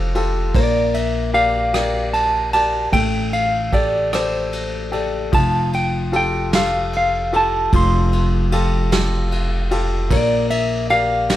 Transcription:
Already playing: upright bass F1, upright piano F3 F4 G4 A4, clean electric guitar C5
0.15 upright piano F4 G4 A4, ride
0.55 upright bass A#1, upright piano A#3, clean electric guitar D5, kick, ride
0.94 clean electric guitar E5, ride
1.33 upright piano G4 A#4 D5, clean electric guitar F5, ride
1.74 upright piano G4 A#4 D5, cross-stick, ride
2.13 clean electric guitar A5, ride
2.53 upright piano G4 A#4 D5, clean electric guitar A5, ride
2.92 upright bass A1, upright piano A3, clean electric guitar G5, kick, ride
3.33 clean electric guitar F5, ride
3.72 upright piano G4 A4 D5, clean electric guitar D5, kick, ride
4.13 upright piano G4 A4 D5, clean electric guitar C5, cross-stick, ride
4.53 ride
4.92 upright piano G4 A4 D5, ride
5.32 upright bass F1, upright piano F3, clean electric guitar A5, kick, ride
5.73 clean electric guitar G5, ride
6.12 upright piano F4 G4 A4, ride
6.16 clean electric guitar G5
6.53 upright piano F4 G4 A4, clean electric guitar F5, snare, ride
6.93 clean electric guitar F5, ride
7.33 upright piano F4 G4 A4, clean electric guitar A5, ride
7.73 upright bass F1, upright piano F3, clean electric guitar C6, kick, ride
8.13 ride
8.52 upright piano F4 G4 A4, ride
8.92 upright piano F4 G4 A4, snare, ride
9.32 ride
9.71 upright piano F4 G4 A4, ride
10.10 upright bass A#1, upright piano A#3, clean electric guitar D5, kick, ride
10.50 clean electric guitar E5, ride
10.90 upright piano G4 A#4 D5, clean electric guitar F5, ride
11.29 upright piano G4 A#4 D5, snare, ride

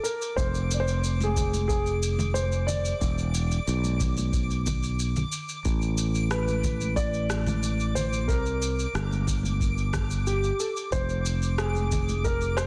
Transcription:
Already playing: synth texture D6
0.03 grand piano A#4, shaker
0.22 shaker
0.36 fretless electric bass F1, grand piano C5, kick, shaker
0.55 shaker
0.71 grand piano D5, shaker
0.80 grand piano C5
0.88 shaker
1.04 shaker
1.21 grand piano G#4, high conga, shaker
1.36 kick, low conga, shaker
1.54 high conga, shaker
1.68 grand piano G#4, kick, shaker
1.86 shaker
2.03 shaker
2.19 high conga, low conga, shaker
2.34 grand piano C5, shaker
2.52 shaker
2.67 grand piano D5, low conga, shaker
2.85 shaker
3.01 fretless electric bass E1, kick, shaker
3.18 shaker
3.35 shaker
3.51 shaker
3.68 fretless electric bass B1, shaker
3.84 high conga, shaker
4.00 kick, low conga, shaker
4.17 high conga, shaker
4.33 kick, shaker
4.50 shaker
4.66 kick, low conga, shaker
4.83 shaker
4.99 shaker
5.16 low conga, shaker
5.32 shaker
5.49 shaker
5.65 fretless electric bass A1, kick, shaker
5.82 shaker
5.98 shaker
6.15 shaker
6.31 grand piano B4, cross-stick, shaker
6.48 high conga, shaker
6.64 kick, low conga, shaker
6.81 high conga, shaker
6.96 grand piano D5, kick, shaker
7.14 shaker
7.30 cross-stick, shaker
7.47 high conga, low conga, shaker
7.63 shaker
7.80 shaker
7.95 grand piano C5, low conga, shaker
8.13 shaker
8.28 fretless electric bass C2, grand piano A#4, kick, shaker
8.46 shaker
8.62 shaker
8.79 shaker
8.95 fretless electric bass G1, cross-stick, shaker
9.11 high conga, shaker
9.27 kick, low conga, shaker
9.43 high conga, shaker
9.60 kick, shaker
9.78 shaker
9.93 kick, cross-stick, low conga, shaker
10.11 shaker
10.27 grand piano G4, shaker
10.44 shaker
10.60 grand piano A4, shaker
10.77 shaker
10.92 fretless electric bass F1, grand piano C5, kick, shaker
11.09 shaker
11.26 shaker
11.42 shaker
11.58 grand piano G#4, cross-stick, shaker
11.74 high conga, shaker
11.92 kick, low conga, shaker
12.09 high conga, shaker
12.24 grand piano A#4, kick, shaker
12.41 shaker
12.57 grand piano C5, cross-stick, shaker

